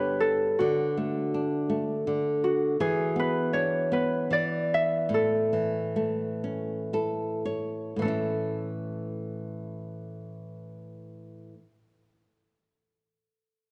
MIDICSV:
0, 0, Header, 1, 3, 480
1, 0, Start_track
1, 0, Key_signature, 3, "major"
1, 0, Tempo, 738007
1, 392, Time_signature, 6, 3, 24, 8
1, 2791, Tempo, 803213
1, 3271, Tempo, 872093
1, 3751, Tempo, 963082
1, 4231, Tempo, 1081081
1, 4711, Tempo, 1125704
1, 7141, End_track
2, 0, Start_track
2, 0, Title_t, "Harp"
2, 0, Program_c, 0, 46
2, 0, Note_on_c, 0, 66, 68
2, 0, Note_on_c, 0, 69, 68
2, 0, Note_on_c, 0, 71, 77
2, 0, Note_on_c, 0, 73, 81
2, 130, Note_off_c, 0, 69, 0
2, 132, Note_on_c, 0, 69, 77
2, 287, Note_off_c, 0, 66, 0
2, 382, Note_on_c, 0, 66, 70
2, 910, Note_off_c, 0, 73, 0
2, 1241, Note_off_c, 0, 71, 0
2, 1561, Note_off_c, 0, 69, 0
2, 1584, Note_off_c, 0, 66, 0
2, 1586, Note_on_c, 0, 66, 67
2, 1825, Note_on_c, 0, 68, 82
2, 2078, Note_on_c, 0, 71, 74
2, 2298, Note_on_c, 0, 73, 78
2, 2553, Note_off_c, 0, 71, 0
2, 2556, Note_on_c, 0, 71, 76
2, 2812, Note_on_c, 0, 74, 79
2, 2848, Note_off_c, 0, 73, 0
2, 3060, Note_on_c, 0, 76, 87
2, 3140, Note_off_c, 0, 66, 0
2, 3262, Note_off_c, 0, 68, 0
2, 3297, Note_on_c, 0, 69, 74
2, 3757, Note_off_c, 0, 71, 0
2, 3854, Note_off_c, 0, 74, 0
2, 3999, Note_off_c, 0, 76, 0
2, 4457, Note_off_c, 0, 69, 0
2, 4714, Note_on_c, 0, 69, 69
2, 6231, Note_off_c, 0, 69, 0
2, 7141, End_track
3, 0, Start_track
3, 0, Title_t, "Nylon-string guitar"
3, 0, Program_c, 1, 24
3, 0, Note_on_c, 1, 43, 60
3, 0, Note_on_c, 1, 50, 44
3, 0, Note_on_c, 1, 59, 49
3, 0, Note_on_c, 1, 62, 46
3, 0, Note_on_c, 1, 67, 50
3, 122, Note_off_c, 1, 50, 0
3, 362, Note_off_c, 1, 43, 0
3, 364, Note_off_c, 1, 59, 0
3, 367, Note_off_c, 1, 62, 0
3, 375, Note_off_c, 1, 67, 0
3, 392, Note_on_c, 1, 50, 62
3, 633, Note_on_c, 1, 57, 43
3, 874, Note_on_c, 1, 62, 44
3, 1095, Note_off_c, 1, 57, 0
3, 1103, Note_on_c, 1, 57, 52
3, 1339, Note_off_c, 1, 50, 0
3, 1347, Note_on_c, 1, 50, 53
3, 1796, Note_off_c, 1, 57, 0
3, 1796, Note_off_c, 1, 62, 0
3, 1807, Note_off_c, 1, 50, 0
3, 1823, Note_on_c, 1, 52, 62
3, 2054, Note_on_c, 1, 59, 47
3, 2302, Note_on_c, 1, 62, 48
3, 2540, Note_off_c, 1, 59, 0
3, 2548, Note_on_c, 1, 59, 51
3, 2792, Note_off_c, 1, 52, 0
3, 2799, Note_on_c, 1, 52, 49
3, 3248, Note_off_c, 1, 62, 0
3, 3252, Note_off_c, 1, 59, 0
3, 3261, Note_off_c, 1, 52, 0
3, 3269, Note_on_c, 1, 45, 59
3, 3510, Note_on_c, 1, 52, 41
3, 3748, Note_on_c, 1, 57, 47
3, 3986, Note_on_c, 1, 61, 43
3, 4230, Note_off_c, 1, 61, 0
3, 4232, Note_on_c, 1, 64, 50
3, 4234, Note_on_c, 1, 69, 54
3, 4448, Note_off_c, 1, 52, 0
3, 4449, Note_off_c, 1, 69, 0
3, 4464, Note_on_c, 1, 73, 52
3, 4685, Note_off_c, 1, 45, 0
3, 4690, Note_on_c, 1, 45, 45
3, 4692, Note_off_c, 1, 57, 0
3, 4694, Note_off_c, 1, 73, 0
3, 4697, Note_off_c, 1, 64, 0
3, 4701, Note_on_c, 1, 52, 45
3, 4716, Note_on_c, 1, 57, 40
3, 4728, Note_on_c, 1, 61, 43
3, 4740, Note_on_c, 1, 64, 48
3, 6208, Note_off_c, 1, 45, 0
3, 6219, Note_off_c, 1, 52, 0
3, 6233, Note_off_c, 1, 57, 0
3, 6245, Note_off_c, 1, 61, 0
3, 6257, Note_off_c, 1, 64, 0
3, 7141, End_track
0, 0, End_of_file